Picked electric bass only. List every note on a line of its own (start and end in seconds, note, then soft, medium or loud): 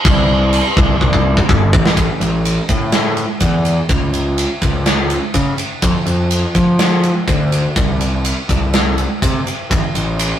0.05 0.59 C2 loud
0.76 0.95 C2 medium
1.01 1.37 C2 loud
1.49 1.71 G1 medium
1.73 1.95 A1 medium
1.97 2.06 A1 medium
2.20 2.57 A1 medium
2.69 3.24 A2 medium
3.41 3.77 E2 medium
3.89 4.44 C#2 medium
4.62 5.17 C#2 medium
5.34 5.53 C#3 medium
5.83 5.92 F2 loud
6.06 6.43 F2 medium
6.55 7.10 F3 medium
7.28 7.64 D2 medium
7.76 8.31 C2 medium
8.49 9.04 C2 medium
9.22 9.40 C3 medium
9.70 9.80 A1 medium
9.95 10.32 A1 medium